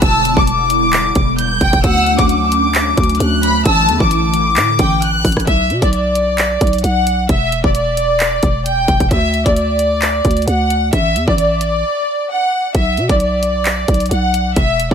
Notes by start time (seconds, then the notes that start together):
Already playing: D3 B3
0.02 E1 G3 E4 A5 E6, kick, closed hi-hat
0.25 closed hi-hat
0.37 E1 D6, kick
0.47 D6, closed hi-hat
0.70 closed hi-hat
0.93 clap, closed hi-hat
1.15 E1, kick, closed hi-hat
1.38 G6, closed hi-hat
1.61 E1 G5, kick, closed hi-hat
1.73 E1, kick, closed hi-hat
1.84 D2 F#3 A3 C#4 D4 F#5 E6, kick, closed hi-hat
2.07 closed hi-hat
2.19 D2 D6, kick, closed hi-hat
2.29 D6, closed hi-hat
2.52 closed hi-hat
2.75 clap, closed hi-hat
2.97 D2, kick, closed hi-hat
3.04 closed hi-hat
3.10 closed hi-hat
3.15 closed hi-hat
3.20 D2 F#6, closed hi-hat
3.43 B5, closed hi-hat
3.66 A1 D3 E3 E4 A5 E6, kick, closed hi-hat
3.88 E2, closed hi-hat
4.00 A1 D6, kick
4.11 D6, closed hi-hat
4.34 closed hi-hat
4.56 A2, clap, closed hi-hat
4.79 A1 G5, kick, closed hi-hat
5.02 F#6, closed hi-hat
5.25 A1, kick, closed hi-hat, open hi-hat
5.32 closed hi-hat
5.37 A1, kick, cross-stick, closed hi-hat
5.47 B1 E5, kick, closed hi-hat
5.70 B2, closed hi-hat
5.82 B1 D5, kick, closed hi-hat
5.93 D5, closed hi-hat
6.15 closed hi-hat
6.38 clap, closed hi-hat
6.61 B1, kick, closed hi-hat
6.67 closed hi-hat
6.73 closed hi-hat
6.78 closed hi-hat
6.84 B1 F#5, closed hi-hat
7.07 closed hi-hat
7.29 E1 E5, kick, closed hi-hat
7.52 closed hi-hat
7.64 E1 D5, kick
7.75 D5, closed hi-hat
7.97 closed hi-hat
8.20 clap, closed hi-hat
8.43 E1, kick, closed hi-hat
8.66 G5, closed hi-hat
8.88 E1, kick, closed hi-hat
9.00 E1, kick, closed hi-hat
9.11 D2 E5, kick, closed hi-hat
9.34 closed hi-hat
9.46 D2 D5, kick, closed hi-hat
9.56 D5, closed hi-hat
9.79 closed hi-hat
10.02 clap, closed hi-hat
10.25 D2, kick, closed hi-hat
10.31 closed hi-hat
10.37 closed hi-hat
10.42 closed hi-hat
10.47 D2 F#5, closed hi-hat
10.70 closed hi-hat
10.93 A1 E5, kick, closed hi-hat
11.16 E2, closed hi-hat
11.28 A1 D5, kick
11.38 D5, closed hi-hat
11.61 closed hi-hat
12.29 F#5
12.75 B1 E5, kick, closed hi-hat
12.97 B2, closed hi-hat
13.09 B1 D5, kick, closed hi-hat
13.20 D5, closed hi-hat
13.43 closed hi-hat
13.66 clap, closed hi-hat
13.88 B1, kick, closed hi-hat
13.94 closed hi-hat
14.00 closed hi-hat
14.06 closed hi-hat
14.11 B1 F#5, closed hi-hat
14.34 closed hi-hat
14.56 E1 E5, kick, closed hi-hat
14.80 closed hi-hat
14.91 E1 D5, kick